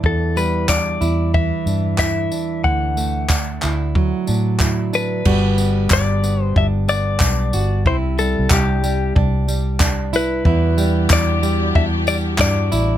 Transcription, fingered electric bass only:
X:1
M:4/4
L:1/16
Q:"Swing 16ths" 1/4=92
K:G
V:1 name="Fingered electric bass" clef=bass
E,,6 E,,3 z G,,4 z2 | D,,6 D,,3 z A,,6 | G,,,4 G,,,4 G,,,4 B,,,2 G,,,2 | C,,3 C,, C,,4 C,,8 |
E,,4 E,,4 E,,4 G,,2 A,,,2 |]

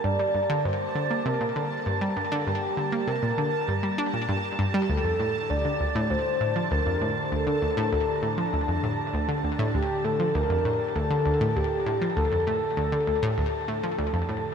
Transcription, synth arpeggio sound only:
X:1
M:4/4
L:1/16
Q:1/4=99
K:Dphr
V:1 name="Synth arpeggio sound" clef=bass
G,, G, G,, D, G,, z D, B, C, B,, D, z G,, G, G,, D, | G,, z D, B, C, B,, D, z G,, G, D B,, G,, z G,, G, | D,, F,, A,, z D,, D, D,, A,, D,, z A,, F, D,, F,, A,, z | D,, D, D,, A,, D,, z A,, F, D,, F,, A,, z D,, D, D,, A,, |
D,, z A,, F, D,, F,, A,, z D,, D, D,, A,, D,, z A,, F, | D,, F,, A,, z D,, D, D,, A,, D,, z A,, F, D,, F,, A,, z |]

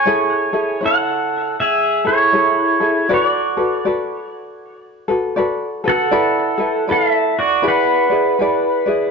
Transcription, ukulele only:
X:1
M:4/4
L:1/8
Q:"Swing" 1/4=79
K:A
V:1 name="Ukulele"
[EGAc] [EGA] [Ec]3 [EGA] [EGAc] [EGA] | [FABd] [FAB] [FABd]3 [FAB] [FABd] [FAB] | [EABd] [EAB] [EABd]2 [EGBd] [EGd] [EGBd] [EGd] |]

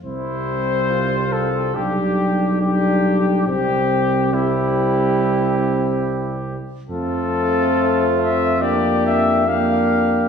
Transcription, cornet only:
X:1
M:4/4
L:1/8
Q:1/4=70
K:Cmix
V:1 name="Cornet"
c3 A G2 G2 | G2 E4- E z | A3 e d e f2 |]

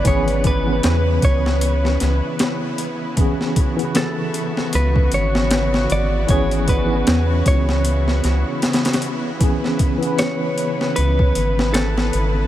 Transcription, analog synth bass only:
X:1
M:4/4
L:1/8
Q:"Swing 16ths" 1/4=77
K:C#m
V:1 name="Analog synth bass" clef=bass
G,,,2 E,, C,,2 C,, z2 | z4 C,, G,,,2 G,,, | G,,,2 E,, C,,2 C,, z2 | z4 C,, G,,,2 G,,, |]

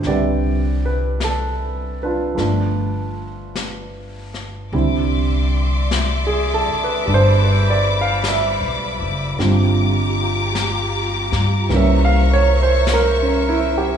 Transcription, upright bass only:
X:1
M:4/4
L:1/8
Q:"Swing" 1/4=51
K:C
V:1 name="Upright bass" clef=bass
C,,4 G,,,4 | C,,3 z G,,,2- (3G,,, B,,, ^F,,, | G,,,3 G,, C,,4 |]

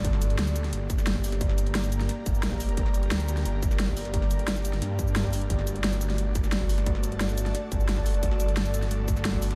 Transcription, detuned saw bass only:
X:1
M:4/4
L:1/8
Q:1/4=176
K:Gm
V:1 name="Detuned saw bass" clef=bass
G,,,2 D,,2 G,,,4- | G,,,4 z G,,, B,,,2 | G,,,2 D,,2 G,,,4- | G,,,4 G,,4 |
G,,,2 G,,,2 G,,,4- | G,,,4 z G,,, G,,,2 | G,,,2 G,,,2 G,,,4 |]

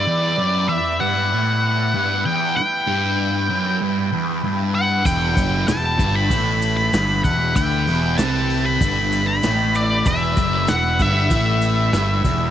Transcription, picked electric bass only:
X:1
M:4/4
L:1/8
Q:1/4=96
K:Em
V:1 name="Picked electric bass" clef=bass
z8 | z8 | E,,, F,,, E,,, G,,, A,,,2 G,,, E,,, | D,, E,,, C,,2 G,,,2 A,,,2 |
E,,, F,,, E,,, G,,, A,,,2 G,,, E,,, |]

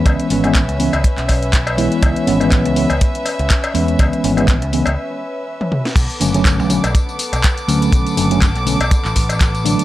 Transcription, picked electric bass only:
X:1
M:4/4
L:1/16
Q:"Swing 16ths" 1/4=122
K:Bdor
V:1 name="Picked electric bass" clef=bass
C,, z G,,,3 C,,2 C,, z B,,, B,,,4- B,,, z | C,, z G,,,3 C,,2 C,, z3 C,, z2 E,,2 | C,, z G,,,3 C,,2 C,, z8 | B,,, z F,,,3 B,,,2 B,,, z3 B,,, z2 D,,2 |
B,,, z F,,,3 B,,,2 B,,, z A,,, A,,,4- A,,, z |]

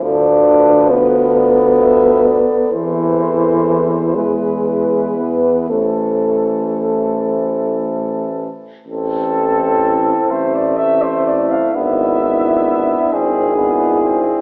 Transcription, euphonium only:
X:1
M:6/8
L:1/8
Q:3/8=42
K:Am
V:1 name="Euphonium"
D2 B,4 | E,3 ^G,2 B, | A,4- A, z | z C3 C2 |
D D3 D2 |]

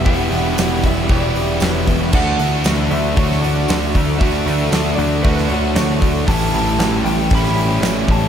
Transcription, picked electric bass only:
X:1
M:4/4
L:1/8
Q:1/4=116
K:D
V:1 name="Picked electric bass" clef=bass
E,,, E,,, E,,, E,,, E,,, E,,, E,,, E,,, | D,, D,, D,, D,, D,,2 D,, D,, | D,, D,, D,, D,, D,, D,, D,, D,, | A,,, A,,, A,,, A,,, A,,,2 A,,, A,,, |]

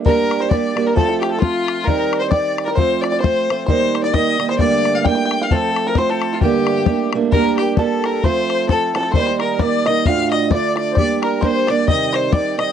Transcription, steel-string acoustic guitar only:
X:1
M:2/4
L:1/8
Q:"Swing" 1/4=132
K:Gm
V:1 name="Steel-string acoustic guitar"
[G,B,DG]2 [G,B,DG] [G,B,DG] | [F,A,CF]2 [F,A,CF]2 | [E,G,CE]2 [E,G,CE]2 | [F,A,CF]2 [F,A,CF] [F,A,CF] |
[E,G,B,E]2 [E,G,B,E] [E,G,B,E] | [G,,D,G,A,B,D]2 [G,A,B,D]2 | [F,A,CF]2 [F,A,CF]2 | [G,,D,G,A,B,D]2 [G,A,B,D] [G,A,B,D] |
[G,B,DG]2 [G,B,DG]2 | [F,A,CF]2 [F,A,CF] [F,A,CF] | [E,G,B,E]2 [E,G,B,E] [E,G,B,E] | [D,,A,,D,A,DF]2 [D,A,DF]2 |
[G,B,DG]2 [G,B,DG] [G,B,DG] | [C,E,G,CE]2 [E,G,CE] [E,G,CE] |]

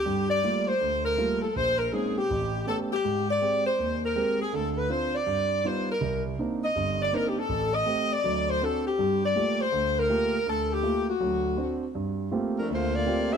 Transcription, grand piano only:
X:1
M:4/4
L:1/8
Q:"Swing" 1/4=162
K:Gm
V:1 name="Grand piano"
[G,,G,]2 [G,A,B,F] z D,,2 [G,A,B,F] z | B,,,2 [_A,B,C_DE] z =A,,,2 [=A,=B,^CG] z | _A,,2 [_A,CG] z E,,2 [A,CG] z | [D,,D,]2 [CDF] z G,,2 [G,=B,EF] z |
C,,2 [B,CDE] z [G,,,G,,]2 [B,CDE] z | A,,,2 [A,CG] z [D,,^F,]2 [CD^F] z | [G,,G,]2 [A,B,FG] z [D,,D,]2 [A,B,FG] z | D,,2 [A,B,FG] z [D,,^F,]2 [CD^F] z |
G,,2 [A,B,CFG] z D,,2 [A,B,CFG] z |]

